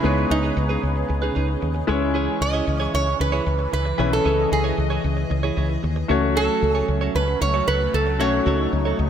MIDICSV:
0, 0, Header, 1, 7, 480
1, 0, Start_track
1, 0, Key_signature, 4, "minor"
1, 0, Tempo, 526316
1, 38, Time_signature, 4, 2, 24, 8
1, 8298, End_track
2, 0, Start_track
2, 0, Title_t, "Resonator guitar played with a steel bar"
2, 0, Program_c, 0, 25
2, 0, Note_on_c, 0, 64, 82
2, 282, Note_off_c, 0, 64, 0
2, 285, Note_on_c, 0, 63, 78
2, 1685, Note_off_c, 0, 63, 0
2, 2205, Note_on_c, 0, 75, 103
2, 2684, Note_off_c, 0, 75, 0
2, 2687, Note_on_c, 0, 73, 95
2, 2923, Note_off_c, 0, 73, 0
2, 2927, Note_on_c, 0, 71, 88
2, 3395, Note_off_c, 0, 71, 0
2, 3406, Note_on_c, 0, 71, 85
2, 3765, Note_off_c, 0, 71, 0
2, 3768, Note_on_c, 0, 69, 87
2, 4124, Note_off_c, 0, 69, 0
2, 4128, Note_on_c, 0, 68, 79
2, 5527, Note_off_c, 0, 68, 0
2, 5807, Note_on_c, 0, 69, 104
2, 6135, Note_off_c, 0, 69, 0
2, 6135, Note_on_c, 0, 68, 104
2, 6249, Note_off_c, 0, 68, 0
2, 6526, Note_on_c, 0, 71, 93
2, 6759, Note_off_c, 0, 71, 0
2, 6763, Note_on_c, 0, 73, 97
2, 7001, Note_on_c, 0, 71, 95
2, 7008, Note_off_c, 0, 73, 0
2, 7244, Note_on_c, 0, 69, 80
2, 7247, Note_off_c, 0, 71, 0
2, 7482, Note_on_c, 0, 73, 89
2, 7488, Note_off_c, 0, 69, 0
2, 8298, Note_off_c, 0, 73, 0
2, 8298, End_track
3, 0, Start_track
3, 0, Title_t, "Clean electric guitar"
3, 0, Program_c, 1, 27
3, 33, Note_on_c, 1, 63, 78
3, 42, Note_on_c, 1, 68, 87
3, 50, Note_on_c, 1, 71, 91
3, 256, Note_off_c, 1, 63, 0
3, 261, Note_off_c, 1, 68, 0
3, 265, Note_off_c, 1, 71, 0
3, 392, Note_on_c, 1, 71, 62
3, 401, Note_on_c, 1, 68, 54
3, 408, Note_on_c, 1, 63, 50
3, 502, Note_off_c, 1, 63, 0
3, 508, Note_off_c, 1, 68, 0
3, 513, Note_off_c, 1, 71, 0
3, 632, Note_on_c, 1, 71, 75
3, 641, Note_on_c, 1, 68, 75
3, 648, Note_on_c, 1, 63, 59
3, 744, Note_off_c, 1, 63, 0
3, 750, Note_off_c, 1, 68, 0
3, 756, Note_off_c, 1, 71, 0
3, 1112, Note_on_c, 1, 71, 79
3, 1121, Note_on_c, 1, 68, 72
3, 1128, Note_on_c, 1, 63, 64
3, 1220, Note_off_c, 1, 63, 0
3, 1229, Note_off_c, 1, 68, 0
3, 1231, Note_on_c, 1, 63, 57
3, 1237, Note_off_c, 1, 71, 0
3, 1240, Note_on_c, 1, 68, 65
3, 1248, Note_on_c, 1, 71, 65
3, 1343, Note_off_c, 1, 71, 0
3, 1355, Note_off_c, 1, 68, 0
3, 1374, Note_off_c, 1, 63, 0
3, 1712, Note_on_c, 1, 64, 78
3, 1721, Note_on_c, 1, 68, 78
3, 1729, Note_on_c, 1, 73, 86
3, 1823, Note_off_c, 1, 73, 0
3, 1834, Note_off_c, 1, 68, 0
3, 1893, Note_off_c, 1, 64, 0
3, 1952, Note_on_c, 1, 64, 83
3, 1960, Note_on_c, 1, 68, 90
3, 1968, Note_on_c, 1, 73, 98
3, 2176, Note_off_c, 1, 64, 0
3, 2180, Note_off_c, 1, 68, 0
3, 2184, Note_off_c, 1, 73, 0
3, 2311, Note_on_c, 1, 73, 70
3, 2320, Note_on_c, 1, 68, 62
3, 2327, Note_on_c, 1, 64, 62
3, 2422, Note_off_c, 1, 64, 0
3, 2428, Note_off_c, 1, 68, 0
3, 2433, Note_off_c, 1, 73, 0
3, 2552, Note_on_c, 1, 73, 87
3, 2561, Note_on_c, 1, 68, 75
3, 2569, Note_on_c, 1, 64, 63
3, 2663, Note_off_c, 1, 64, 0
3, 2669, Note_off_c, 1, 68, 0
3, 2674, Note_off_c, 1, 73, 0
3, 3030, Note_on_c, 1, 73, 88
3, 3039, Note_on_c, 1, 68, 78
3, 3046, Note_on_c, 1, 64, 64
3, 3142, Note_off_c, 1, 64, 0
3, 3148, Note_off_c, 1, 68, 0
3, 3153, Note_off_c, 1, 73, 0
3, 3630, Note_on_c, 1, 64, 81
3, 3639, Note_on_c, 1, 68, 85
3, 3647, Note_on_c, 1, 73, 99
3, 3742, Note_off_c, 1, 73, 0
3, 3753, Note_off_c, 1, 68, 0
3, 3812, Note_off_c, 1, 64, 0
3, 3870, Note_on_c, 1, 64, 85
3, 3879, Note_on_c, 1, 68, 91
3, 3886, Note_on_c, 1, 73, 93
3, 4095, Note_off_c, 1, 64, 0
3, 4100, Note_off_c, 1, 68, 0
3, 4103, Note_off_c, 1, 73, 0
3, 4231, Note_on_c, 1, 73, 72
3, 4241, Note_on_c, 1, 68, 64
3, 4249, Note_on_c, 1, 64, 50
3, 4344, Note_off_c, 1, 64, 0
3, 4351, Note_off_c, 1, 68, 0
3, 4355, Note_off_c, 1, 73, 0
3, 4471, Note_on_c, 1, 73, 79
3, 4479, Note_on_c, 1, 68, 71
3, 4487, Note_on_c, 1, 64, 69
3, 4581, Note_off_c, 1, 64, 0
3, 4588, Note_off_c, 1, 68, 0
3, 4593, Note_off_c, 1, 73, 0
3, 4954, Note_on_c, 1, 73, 72
3, 4962, Note_on_c, 1, 68, 68
3, 4970, Note_on_c, 1, 64, 64
3, 5063, Note_off_c, 1, 64, 0
3, 5072, Note_off_c, 1, 68, 0
3, 5074, Note_on_c, 1, 64, 55
3, 5079, Note_off_c, 1, 73, 0
3, 5083, Note_on_c, 1, 68, 66
3, 5090, Note_on_c, 1, 73, 61
3, 5185, Note_off_c, 1, 73, 0
3, 5196, Note_off_c, 1, 68, 0
3, 5215, Note_off_c, 1, 64, 0
3, 5556, Note_on_c, 1, 66, 76
3, 5565, Note_on_c, 1, 69, 76
3, 5571, Note_on_c, 1, 73, 76
3, 5667, Note_off_c, 1, 73, 0
3, 5679, Note_off_c, 1, 69, 0
3, 5735, Note_off_c, 1, 66, 0
3, 5797, Note_on_c, 1, 66, 80
3, 5806, Note_on_c, 1, 69, 88
3, 5813, Note_on_c, 1, 73, 98
3, 6019, Note_off_c, 1, 66, 0
3, 6023, Note_off_c, 1, 69, 0
3, 6026, Note_off_c, 1, 73, 0
3, 6154, Note_on_c, 1, 73, 64
3, 6163, Note_on_c, 1, 69, 62
3, 6170, Note_on_c, 1, 66, 48
3, 6268, Note_off_c, 1, 66, 0
3, 6273, Note_off_c, 1, 69, 0
3, 6279, Note_off_c, 1, 73, 0
3, 6394, Note_on_c, 1, 73, 85
3, 6404, Note_on_c, 1, 69, 69
3, 6411, Note_on_c, 1, 66, 62
3, 6505, Note_off_c, 1, 66, 0
3, 6511, Note_off_c, 1, 69, 0
3, 6516, Note_off_c, 1, 73, 0
3, 6875, Note_on_c, 1, 73, 73
3, 6884, Note_on_c, 1, 69, 70
3, 6892, Note_on_c, 1, 66, 57
3, 6987, Note_off_c, 1, 66, 0
3, 6995, Note_off_c, 1, 69, 0
3, 6998, Note_on_c, 1, 66, 58
3, 7002, Note_off_c, 1, 73, 0
3, 7006, Note_on_c, 1, 69, 57
3, 7013, Note_on_c, 1, 73, 62
3, 7107, Note_off_c, 1, 73, 0
3, 7118, Note_off_c, 1, 69, 0
3, 7137, Note_off_c, 1, 66, 0
3, 7475, Note_on_c, 1, 66, 80
3, 7485, Note_on_c, 1, 69, 86
3, 7492, Note_on_c, 1, 73, 86
3, 7587, Note_off_c, 1, 73, 0
3, 7599, Note_off_c, 1, 69, 0
3, 7655, Note_off_c, 1, 66, 0
3, 7715, Note_on_c, 1, 66, 82
3, 7724, Note_on_c, 1, 69, 88
3, 7732, Note_on_c, 1, 73, 93
3, 7937, Note_off_c, 1, 66, 0
3, 7942, Note_off_c, 1, 69, 0
3, 7946, Note_off_c, 1, 73, 0
3, 8074, Note_on_c, 1, 73, 70
3, 8084, Note_on_c, 1, 69, 57
3, 8091, Note_on_c, 1, 66, 59
3, 8185, Note_off_c, 1, 66, 0
3, 8190, Note_off_c, 1, 69, 0
3, 8197, Note_off_c, 1, 73, 0
3, 8298, End_track
4, 0, Start_track
4, 0, Title_t, "Grand piano"
4, 0, Program_c, 2, 0
4, 0, Control_c, 2, 64, 127
4, 25, Note_on_c, 2, 56, 66
4, 32, Note_on_c, 2, 59, 57
4, 39, Note_on_c, 2, 63, 59
4, 47, Note_on_c, 2, 73, 71
4, 1678, Note_off_c, 2, 56, 0
4, 1681, Note_off_c, 2, 59, 0
4, 1685, Note_off_c, 2, 63, 0
4, 1689, Note_off_c, 2, 73, 0
4, 1707, Note_on_c, 2, 56, 76
4, 1713, Note_on_c, 2, 61, 68
4, 1721, Note_on_c, 2, 64, 67
4, 1728, Note_on_c, 2, 73, 84
4, 1729, Control_c, 2, 64, 0
4, 1874, Control_c, 2, 64, 127
4, 3596, Note_off_c, 2, 56, 0
4, 3599, Note_off_c, 2, 61, 0
4, 3603, Note_off_c, 2, 64, 0
4, 3607, Note_off_c, 2, 73, 0
4, 3628, Note_on_c, 2, 52, 67
4, 3635, Note_on_c, 2, 61, 58
4, 3642, Note_on_c, 2, 64, 58
4, 3650, Note_on_c, 2, 71, 72
4, 5517, Note_off_c, 2, 52, 0
4, 5520, Note_off_c, 2, 61, 0
4, 5524, Note_off_c, 2, 64, 0
4, 5528, Note_off_c, 2, 71, 0
4, 5548, Note_on_c, 2, 57, 76
4, 5554, Note_on_c, 2, 61, 64
4, 5561, Note_on_c, 2, 66, 69
4, 5569, Note_on_c, 2, 73, 78
4, 5570, Control_c, 2, 64, 0
4, 5740, Control_c, 2, 64, 127
4, 7437, Note_off_c, 2, 57, 0
4, 7440, Note_off_c, 2, 61, 0
4, 7443, Note_off_c, 2, 66, 0
4, 7447, Note_off_c, 2, 73, 0
4, 7467, Note_on_c, 2, 57, 60
4, 7476, Note_on_c, 2, 61, 56
4, 7482, Note_on_c, 2, 66, 58
4, 7489, Note_on_c, 2, 73, 71
4, 8298, Note_off_c, 2, 57, 0
4, 8298, Note_off_c, 2, 61, 0
4, 8298, Note_off_c, 2, 66, 0
4, 8298, Note_off_c, 2, 73, 0
4, 8298, End_track
5, 0, Start_track
5, 0, Title_t, "Analog synth pad"
5, 0, Program_c, 3, 89
5, 0, Note_on_c, 3, 49, 79
5, 0, Note_on_c, 3, 61, 69
5, 0, Note_on_c, 3, 68, 68
5, 0, Note_on_c, 3, 71, 81
5, 0, Note_on_c, 3, 75, 70
5, 1682, Note_off_c, 3, 49, 0
5, 1682, Note_off_c, 3, 61, 0
5, 1682, Note_off_c, 3, 68, 0
5, 1682, Note_off_c, 3, 71, 0
5, 1682, Note_off_c, 3, 75, 0
5, 1720, Note_on_c, 3, 52, 78
5, 1722, Note_on_c, 3, 61, 85
5, 3621, Note_off_c, 3, 61, 0
5, 3637, Note_on_c, 3, 75, 85
5, 5523, Note_off_c, 3, 52, 0
5, 5538, Note_off_c, 3, 75, 0
5, 5561, Note_on_c, 3, 61, 83
5, 5562, Note_on_c, 3, 54, 81
5, 5563, Note_on_c, 3, 57, 73
5, 7461, Note_off_c, 3, 61, 0
5, 7478, Note_on_c, 3, 63, 86
5, 8298, Note_off_c, 3, 54, 0
5, 8298, Note_off_c, 3, 57, 0
5, 8298, Note_off_c, 3, 63, 0
5, 8298, End_track
6, 0, Start_track
6, 0, Title_t, "Fretless electric bass"
6, 0, Program_c, 4, 35
6, 36, Note_on_c, 4, 37, 97
6, 210, Note_off_c, 4, 37, 0
6, 276, Note_on_c, 4, 37, 92
6, 449, Note_off_c, 4, 37, 0
6, 517, Note_on_c, 4, 37, 106
6, 690, Note_off_c, 4, 37, 0
6, 758, Note_on_c, 4, 37, 91
6, 931, Note_off_c, 4, 37, 0
6, 999, Note_on_c, 4, 37, 94
6, 1171, Note_off_c, 4, 37, 0
6, 1239, Note_on_c, 4, 37, 97
6, 1412, Note_off_c, 4, 37, 0
6, 1479, Note_on_c, 4, 39, 81
6, 1651, Note_off_c, 4, 39, 0
6, 1721, Note_on_c, 4, 37, 98
6, 2065, Note_off_c, 4, 37, 0
6, 2197, Note_on_c, 4, 37, 94
6, 2370, Note_off_c, 4, 37, 0
6, 2437, Note_on_c, 4, 37, 107
6, 2611, Note_off_c, 4, 37, 0
6, 2680, Note_on_c, 4, 37, 96
6, 2852, Note_off_c, 4, 37, 0
6, 2917, Note_on_c, 4, 37, 99
6, 3090, Note_off_c, 4, 37, 0
6, 3158, Note_on_c, 4, 37, 95
6, 3331, Note_off_c, 4, 37, 0
6, 3398, Note_on_c, 4, 37, 79
6, 3571, Note_off_c, 4, 37, 0
6, 3637, Note_on_c, 4, 35, 91
6, 3810, Note_off_c, 4, 35, 0
6, 3878, Note_on_c, 4, 37, 98
6, 4051, Note_off_c, 4, 37, 0
6, 4118, Note_on_c, 4, 37, 96
6, 4291, Note_off_c, 4, 37, 0
6, 4358, Note_on_c, 4, 37, 92
6, 4531, Note_off_c, 4, 37, 0
6, 4598, Note_on_c, 4, 37, 101
6, 4771, Note_off_c, 4, 37, 0
6, 4838, Note_on_c, 4, 37, 92
6, 5011, Note_off_c, 4, 37, 0
6, 5078, Note_on_c, 4, 37, 96
6, 5251, Note_off_c, 4, 37, 0
6, 5320, Note_on_c, 4, 39, 78
6, 5492, Note_off_c, 4, 39, 0
6, 5558, Note_on_c, 4, 37, 98
6, 5904, Note_off_c, 4, 37, 0
6, 6038, Note_on_c, 4, 37, 92
6, 6211, Note_off_c, 4, 37, 0
6, 6277, Note_on_c, 4, 37, 95
6, 6450, Note_off_c, 4, 37, 0
6, 6518, Note_on_c, 4, 37, 95
6, 6691, Note_off_c, 4, 37, 0
6, 6758, Note_on_c, 4, 37, 96
6, 6931, Note_off_c, 4, 37, 0
6, 6997, Note_on_c, 4, 37, 92
6, 7171, Note_off_c, 4, 37, 0
6, 7238, Note_on_c, 4, 37, 77
6, 7478, Note_off_c, 4, 37, 0
6, 7478, Note_on_c, 4, 35, 92
6, 7651, Note_off_c, 4, 35, 0
6, 7716, Note_on_c, 4, 37, 103
6, 7890, Note_off_c, 4, 37, 0
6, 7958, Note_on_c, 4, 37, 93
6, 8131, Note_off_c, 4, 37, 0
6, 8198, Note_on_c, 4, 37, 101
6, 8298, Note_off_c, 4, 37, 0
6, 8298, End_track
7, 0, Start_track
7, 0, Title_t, "Muted clean electric guitar strokes"
7, 513, Note_on_c, 9, 29, 37
7, 604, Note_off_c, 9, 29, 0
7, 755, Note_on_c, 9, 29, 38
7, 846, Note_off_c, 9, 29, 0
7, 874, Note_on_c, 9, 29, 45
7, 965, Note_off_c, 9, 29, 0
7, 994, Note_on_c, 9, 29, 40
7, 1086, Note_off_c, 9, 29, 0
7, 1354, Note_on_c, 9, 29, 45
7, 1445, Note_off_c, 9, 29, 0
7, 1473, Note_on_c, 9, 29, 42
7, 1564, Note_off_c, 9, 29, 0
7, 1592, Note_on_c, 9, 29, 46
7, 1684, Note_off_c, 9, 29, 0
7, 1833, Note_on_c, 9, 29, 39
7, 1925, Note_off_c, 9, 29, 0
7, 2193, Note_on_c, 9, 29, 47
7, 2284, Note_off_c, 9, 29, 0
7, 2432, Note_on_c, 9, 29, 34
7, 2524, Note_off_c, 9, 29, 0
7, 2674, Note_on_c, 9, 29, 44
7, 2765, Note_off_c, 9, 29, 0
7, 2794, Note_on_c, 9, 29, 49
7, 2885, Note_off_c, 9, 29, 0
7, 2914, Note_on_c, 9, 29, 42
7, 3005, Note_off_c, 9, 29, 0
7, 3274, Note_on_c, 9, 29, 51
7, 3365, Note_off_c, 9, 29, 0
7, 3393, Note_on_c, 9, 29, 36
7, 3484, Note_off_c, 9, 29, 0
7, 3515, Note_on_c, 9, 29, 53
7, 3606, Note_off_c, 9, 29, 0
7, 3753, Note_on_c, 9, 29, 35
7, 3844, Note_off_c, 9, 29, 0
7, 4113, Note_on_c, 9, 29, 48
7, 4204, Note_off_c, 9, 29, 0
7, 4355, Note_on_c, 9, 29, 33
7, 4446, Note_off_c, 9, 29, 0
7, 4592, Note_on_c, 9, 29, 42
7, 4684, Note_off_c, 9, 29, 0
7, 4713, Note_on_c, 9, 29, 45
7, 4805, Note_off_c, 9, 29, 0
7, 4835, Note_on_c, 9, 29, 41
7, 4926, Note_off_c, 9, 29, 0
7, 5196, Note_on_c, 9, 29, 46
7, 5287, Note_off_c, 9, 29, 0
7, 5316, Note_on_c, 9, 29, 47
7, 5408, Note_off_c, 9, 29, 0
7, 5437, Note_on_c, 9, 29, 51
7, 5528, Note_off_c, 9, 29, 0
7, 5678, Note_on_c, 9, 29, 38
7, 5769, Note_off_c, 9, 29, 0
7, 6038, Note_on_c, 9, 29, 44
7, 6129, Note_off_c, 9, 29, 0
7, 6278, Note_on_c, 9, 29, 43
7, 6370, Note_off_c, 9, 29, 0
7, 6516, Note_on_c, 9, 29, 42
7, 6607, Note_off_c, 9, 29, 0
7, 6638, Note_on_c, 9, 29, 45
7, 6729, Note_off_c, 9, 29, 0
7, 6757, Note_on_c, 9, 29, 41
7, 6848, Note_off_c, 9, 29, 0
7, 7118, Note_on_c, 9, 29, 45
7, 7210, Note_off_c, 9, 29, 0
7, 7238, Note_on_c, 9, 29, 40
7, 7329, Note_off_c, 9, 29, 0
7, 7358, Note_on_c, 9, 29, 51
7, 7449, Note_off_c, 9, 29, 0
7, 7598, Note_on_c, 9, 29, 43
7, 7689, Note_off_c, 9, 29, 0
7, 7956, Note_on_c, 9, 29, 37
7, 8047, Note_off_c, 9, 29, 0
7, 8196, Note_on_c, 9, 29, 38
7, 8287, Note_off_c, 9, 29, 0
7, 8298, End_track
0, 0, End_of_file